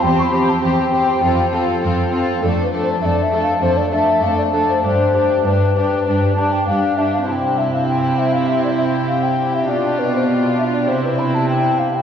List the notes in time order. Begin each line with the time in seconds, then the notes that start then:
0.03 E2 C4 G4 C5 G5
0.19 B5 C#6
0.33 C4 G4 C5
0.49 A5
0.62 E2 C4 G4 C5 G5
0.92 C4 G4 C5
1.22 F2 C4 F4 A4
1.52 C4 F4 A4
1.82 F2 C4 F4 A4
2.11 C4 F4 A4
2.42 F2 A3 D4 A4
2.64 B4
2.72 A3 D4 A4
2.83 C5
3.01 F2 A3 D4 A4 E5
3.05 D5
3.23 E5
3.31 A3 D4 A4
3.42 F5
3.61 F2 A3 D4 A4 C5
3.77 D5
3.92 A3 D4 A4 E5
4.22 F2 A3 D4 A4 F5
4.38 D5
4.53 A3 D4 A4
4.70 C5
4.83 G2 D4 G4 C5
5.13 D4 G4
5.44 G2 D4 G4 B4
5.76 D4 G4
6.07 G2 D4 G4
6.36 D4 G4 A5
6.53 G5
6.66 G2 D4 G4 F5
6.97 D4 G4 E5
7.14 F5
7.24 C4 E4 G4 A5
7.28 C3 C4 E4 G4
7.32 G5
7.58 E5
7.74 F5
7.88 G5
8.19 E5
8.33 F5
8.47 E5
8.64 D5
8.78 E5
9.08 F5
9.23 G5
9.54 E5
9.63 D4 F4 G4
9.68 B2 D4 F4 D5
9.99 B4
10.15 C5
10.28 D5
10.58 E5
10.74 D5
10.83 C4 E4 G4
10.88 C3 C4 E4 C5
11.04 B4
11.18 B5
11.35 A5
11.49 G5
11.79 F5
11.95 G5